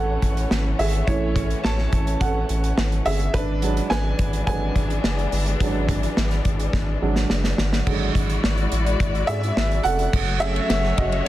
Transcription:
0.00 0.17 A1 medium
0.00 1.07 E3 medium
0.00 3.30 E3 medium
0.00 1.08 A3 soft
0.00 3.30 A3 medium
0.00 1.08 C#4 medium
0.00 3.30 C#4 medium
0.00 1.09 E4 medium
0.00 0.47 A4 medium
0.00 1.07 C#5 medium
0.00 0.46 F#5 medium
0.00 1.64 A5 medium
0.22 0.46 A1 medium
0.22 kick medium
0.22 closed hi-hat medium
0.37 closed hi-hat soft
0.51 0.74 G#1 loud
0.51 snare loud
0.79 1.02 G#1 medium
0.79 0.87 G#4 medium
0.79 0.85 E5 medium
0.79 open hi-hat medium
0.93 closed hi-hat soft
1.07 1.54 A1 loud
1.07 1.88 E3 medium
1.07 1.89 A3 soft
1.07 1.89 C#4 medium
1.07 1.61 E4 medium
1.07 1.64 C#5 medium
1.07 kick loud
1.07 closed hi-hat medium
1.36 kick medium
1.36 closed hi-hat medium
1.50 closed hi-hat soft
1.64 1.88 A1 loud
1.64 2.18 C#5 medium
1.64 2.22 A5 medium
1.64 snare loud
1.78 snare soft
1.93 2.16 A1 medium
1.93 kick medium
1.93 closed hi-hat medium
2.07 closed hi-hat soft
2.20 2.44 A1 loud
2.20 2.74 A4 medium
2.20 2.73 F#5 medium
2.20 kick loud
2.20 closed hi-hat medium
2.49 2.72 A1 medium
2.49 closed hi-hat medium
2.64 closed hi-hat soft
2.78 3.01 G#1 medium
2.78 snare loud
2.92 closed hi-hat soft
3.06 3.29 G1 medium
3.06 3.33 G#4 medium
3.06 3.35 E5 medium
3.06 open hi-hat medium
3.20 closed hi-hat soft
3.34 3.80 G#1 loud
3.34 7.83 E3 medium
3.34 7.83 G#3 medium
3.34 7.83 D4 medium
3.34 3.62 D4 medium
3.34 3.90 B4 medium
3.34 kick loud
3.34 closed hi-hat medium
3.62 4.43 F#3 medium
3.62 4.43 G#3 soft
3.62 4.44 D4 medium
3.62 closed hi-hat medium
3.77 closed hi-hat soft
3.90 4.14 G#1 loud
3.90 4.44 B4 medium
3.90 4.45 G#5 medium
3.90 snare loud
4.19 4.42 G#1 medium
4.19 kick medium
4.19 closed hi-hat medium
4.33 closed hi-hat medium
4.47 4.70 G#1 loud
4.47 4.73 F#3 soft
4.47 4.73 G#3 soft
4.47 4.73 D4 soft
4.47 7.27 B4 medium
4.47 7.26 G#5 medium
4.47 kick loud
4.47 closed hi-hat medium
4.76 4.99 G#1 loud
4.76 kick medium
4.76 closed hi-hat medium
4.90 closed hi-hat soft
5.04 5.27 F#1 medium
5.04 snare loud
5.19 closed hi-hat soft
5.32 5.55 G1 medium
5.32 open hi-hat medium
5.46 closed hi-hat soft
5.60 6.07 G#1 loud
5.60 6.41 F#3 medium
5.60 6.42 G#3 soft
5.60 6.42 D4 medium
5.60 kick loud
5.60 closed hi-hat medium
5.89 kick medium
5.89 closed hi-hat medium
6.03 closed hi-hat medium
6.17 6.40 G#1 loud
6.17 snare loud
6.31 snare soft
6.31 closed hi-hat soft
6.45 6.68 G#1 medium
6.45 kick medium
6.45 closed hi-hat medium
6.60 closed hi-hat medium
6.73 6.97 G#1 loud
6.73 kick loud
6.73 snare medium
7.02 7.25 G#1 loud
7.02 7.27 F#3 soft
7.02 7.28 G#3 soft
7.02 7.28 D4 soft
7.16 snare medium
7.30 7.54 F#1 medium
7.30 snare medium
7.44 snare medium
7.58 7.82 G1 medium
7.58 snare medium
7.73 snare medium
7.86 8.10 G#1 loud
7.86 8.67 D3 soft
7.86 8.68 F#3 soft
7.86 8.68 G#3 medium
7.86 10.11 G#3 medium
7.86 10.11 E4 medium
7.86 10.11 F#4 medium
7.86 10.11 D5 medium
7.86 kick medium
7.86 crash medium
8.15 8.38 G#1 loud
8.15 kick medium
8.15 closed hi-hat medium
8.30 closed hi-hat soft
8.44 8.67 G#1 loud
8.44 snare loud
8.58 closed hi-hat soft
8.72 8.95 A1 medium
8.72 closed hi-hat medium
8.86 closed hi-hat medium
9.00 9.23 G#1 loud
9.00 kick loud
9.00 closed hi-hat medium
9.15 closed hi-hat soft
9.27 9.52 G#2 loud
9.27 9.81 G#4 medium
9.27 9.86 E5 loud
9.27 closed hi-hat medium
9.43 closed hi-hat soft
9.57 9.80 G#1 medium
9.57 snare loud
9.72 closed hi-hat soft
9.84 10.08 F1 medium
9.84 10.38 A4 medium
9.84 10.42 F#5 loud
9.84 closed hi-hat medium
9.99 closed hi-hat soft
10.13 10.60 F#1 loud
10.13 11.28 F#3 medium
10.13 11.28 A3 medium
10.13 11.28 F#4 medium
10.13 11.28 C#5 medium
10.13 kick loud
10.13 crash loud
10.40 11.22 F#3 medium
10.40 11.22 A3 medium
10.40 11.23 C#4 medium
10.40 10.94 G#4 medium
10.40 10.99 E5 loud
10.40 ride medium
10.56 ride soft
10.70 10.93 F#1 loud
10.70 snare loud
10.70 ride medium
10.84 snare soft
10.97 11.21 F#1 loud
10.97 11.25 F#4 medium
10.97 11.27 D#5 medium
10.97 kick medium
10.97 ride medium
11.12 ride soft

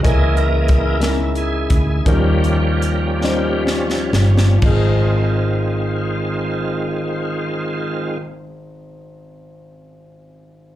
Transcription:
0.03 0.98 C#3 medium
0.03 0.97 E3 soft
0.03 0.89 G#3 medium
0.03 0.98 A#3 soft
0.03 0.89 C#4 medium
0.03 0.89 E4 medium
0.03 0.37 E4 medium
0.03 0.37 G#4 medium
0.03 0.90 A#4 medium
0.03 0.98 D#5 soft
0.03 kick medium
0.03 closed hi-hat medium
0.37 1.32 E4 medium
0.37 1.01 A#4 medium
0.37 closed hi-hat soft
0.68 kick medium
0.68 closed hi-hat medium
1.00 1.92 G#3 medium
1.00 1.92 C#4 soft
1.00 1.09 D#4 soft
1.00 1.17 A#4 medium
1.00 1.93 A#4 medium
1.00 snare medium
1.00 closed hi-hat medium
1.09 1.96 E4 medium
1.35 2.03 E4 medium
1.35 2.09 G#4 medium
1.35 closed hi-hat soft
1.70 2.03 D2 medium
1.70 kick medium
1.70 closed hi-hat medium
2.05 4.09 D#2 medium
2.05 3.19 D#3 soft
2.05 2.13 F3 medium
2.05 4.59 F3 soft
2.05 4.59 G3 soft
2.05 3.63 A#3 soft
2.05 3.07 C#4 medium
2.05 4.60 C#4 soft
2.05 3.08 D#4 medium
2.05 3.63 G4 medium
2.05 3.08 A#4 medium
2.05 kick medium
2.05 closed hi-hat medium
2.12 3.10 G3 medium
2.44 closed hi-hat soft
2.82 closed hi-hat medium
3.22 4.43 G3 medium
3.22 4.43 C#4 medium
3.22 4.44 D#4 medium
3.22 4.44 C5 medium
3.22 snare soft
3.67 snare medium
3.90 snare soft
4.13 4.58 G1 medium
4.13 snare medium
4.38 snare medium
4.58 8.16 G#1 medium
4.58 8.13 F3 medium
4.58 8.15 C4 medium
4.58 kick medium
4.58 crash medium
4.63 8.17 G#1 medium
4.63 8.18 D#3 medium
4.63 8.17 G#3 medium
4.63 8.18 C4 medium
4.63 8.18 D#4 medium
4.63 8.18 F4 medium
4.67 8.21 G#4 medium

